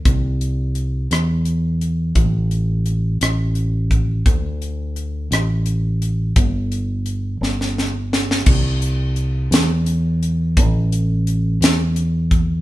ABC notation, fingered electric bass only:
X:1
M:6/8
L:1/8
Q:3/8=57
K:Ddor
V:1 name="Fingered electric bass" clef=bass
C,,3 E,,3 | A,,,3 A,,,3 | D,,3 A,,,3 | G,,,3 G,,,3 |
C,,3 E,,3 | A,,,3 E,,3 |]